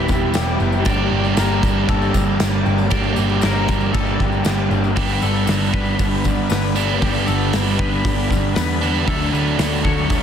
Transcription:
Already playing: overdriven electric guitar E3 G3 B3 E4, string machine G4 E5 F#5, clean electric guitar B4
0.08 picked electric bass E1, overdriven electric guitar B3 E4 G4, kick, tambourine
0.34 picked electric bass E1, overdriven electric guitar E3 B3 E4 G4, clean electric guitar G4, snare, tambourine, crash
0.59 picked electric bass F#1, overdriven electric guitar B3 E4 G4, tambourine
0.72 tambourine
0.84 picked electric bass G1, overdriven electric guitar G2 D3 G3 A#3 D4 G4, string machine A#3 A5 D6, clean electric guitar D5, kick, tambourine, crash
1.11 picked electric bass G1, overdriven electric guitar A#3 D4 G4
1.24 tambourine
1.37 picked electric bass G1, overdriven electric guitar G3 A#3 D4 G4, clean electric guitar A#4, snare, tambourine, crash
1.62 picked electric bass G1, overdriven electric guitar A#3 D4 G4, kick, tambourine
1.87 picked electric bass G1, overdriven electric guitar G3 A#3 D4 G4, clean electric guitar A4, kick, tambourine, crash
2.02 tambourine
2.13 picked electric bass G1, overdriven electric guitar A#3 D4 G4, kick, tambourine
2.38 picked electric bass G1, overdriven electric guitar G3 A#3 D4 G4, snare, tambourine, crash
2.65 picked electric bass G1, overdriven electric guitar A#3 D4 G4, tambourine
2.78 tambourine
2.90 picked electric bass G1, overdriven electric guitar G2 D3 G3 A#3 D4 G4, clean electric guitar D5, string machine A5, kick, tambourine, crash
3.03 tambourine
3.16 picked electric bass G1, overdriven electric guitar A#3 D4 G4, tambourine
3.29 tambourine
3.42 picked electric bass G1, overdriven electric guitar G3 A#3 D4 G4, clean electric guitar A#4, snare, tambourine, crash
3.55 tambourine
3.67 picked electric bass G1, overdriven electric guitar A#3 D4 G4, kick, tambourine
3.81 tambourine
3.93 picked electric bass G1, overdriven electric guitar G3 A#3 D4 G4, clean electric guitar A4, kick, tambourine, crash
4.06 tambourine
4.18 picked electric bass G1, overdriven electric guitar A#3 D4 G4, kick
4.32 tambourine
4.45 picked electric bass G1, overdriven electric guitar G3 A#3 D4 G4, snare, tambourine, crash
4.69 picked electric bass G1, overdriven electric guitar A#3 D4 G4, tambourine
4.84 tambourine
4.95 picked electric bass G1, overdriven electric guitar G2 D3 G3 B3 D4, string machine D4 B4 G5 B5, clean electric guitar G4, kick, open hi-hat, tambourine
5.09 tambourine
5.21 picked electric bass G1, overdriven electric guitar G3 B3 D4, clean electric guitar A4, tambourine
5.35 tambourine
5.47 picked electric bass G1, overdriven electric guitar D3 G3 B3 D4, snare, open hi-hat, tambourine
5.61 tambourine
5.73 picked electric bass G1, overdriven electric guitar G3 B3 D4, clean electric guitar B4, kick, tambourine
5.86 tambourine
5.98 picked electric bass G1, overdriven electric guitar G2 D3 G3 B3 D4, kick, open hi-hat, tambourine
6.24 overdriven electric guitar G3 B3 D4, kick, tambourine
6.50 picked electric bass G1, overdriven electric guitar D3 G3 B3 D4, clean electric guitar B4, snare, open hi-hat, tambourine
6.75 overdriven electric guitar G2 D3 G3 B3 D4, tambourine
7.00 picked electric bass G1, overdriven electric guitar G2 D3 G3 B3 D4, clean electric guitar G4, kick, open hi-hat, tambourine
7.15 tambourine
7.27 picked electric bass G1, overdriven electric guitar G3 B3 D4, clean electric guitar A4, tambourine
7.41 tambourine
7.53 picked electric bass G1, overdriven electric guitar D3 G3 B3 D4, snare, open hi-hat, tambourine
7.67 tambourine
7.78 picked electric bass G1, overdriven electric guitar G3 B3 D4, clean electric guitar B4, kick
7.93 tambourine
8.04 picked electric bass G1, overdriven electric guitar G2 D3 G3 B3 D4, kick, open hi-hat, tambourine
8.29 picked electric bass G1, overdriven electric guitar G3 B3 D4, kick, tambourine
8.54 picked electric bass E2, overdriven electric guitar D3 G3 B3 D4, clean electric guitar B4, snare, open hi-hat, tambourine
8.80 overdriven electric guitar G2 D3 G3 B3 D4, tambourine
8.95 tambourine
9.07 picked electric bass D2, overdriven electric guitar D3 F#3 A3 D4, clean electric guitar A4, string machine C#5 F#5 A5, kick, open hi-hat, tambourine
9.22 tambourine
9.33 picked electric bass D2, overdriven electric guitar F#3 A3 D4, clean electric guitar B4, tambourine
9.48 tambourine
9.58 picked electric bass D2, overdriven electric guitar D3 F#3 A3 D4, snare, open hi-hat, tambourine
9.73 tambourine
9.83 picked electric bass D2, overdriven electric guitar F#3 A3 D4, clean electric guitar C#5, kick, tambourine
9.98 tambourine
10.09 picked electric bass D2, overdriven electric guitar D3 F#3 A3 D4, kick, open hi-hat, tambourine

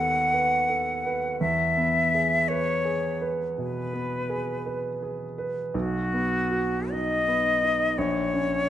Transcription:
Already playing: grand piano D#2 B3 A4, flute F#5
0.33 grand piano B4
0.68 grand piano A4
1.06 grand piano B4
1.40 grand piano E2, flute E5
1.77 grand piano B3
2.14 grand piano G#4
2.48 grand piano B4, flute C#5
2.85 grand piano G#4
3.21 grand piano B4
3.58 grand piano B2, flute B4
3.93 grand piano B3
4.30 grand piano G#4
4.66 grand piano B4
5.03 grand piano G#4
5.38 grand piano B4
5.74 grand piano B1, flute F#4
6.13 grand piano B3
6.51 grand piano F#4
6.91 grand piano D#4, flute D#5
7.28 grand piano B3
7.64 grand piano D#4
7.98 grand piano A#1, flute C#5
8.34 grand piano C#4

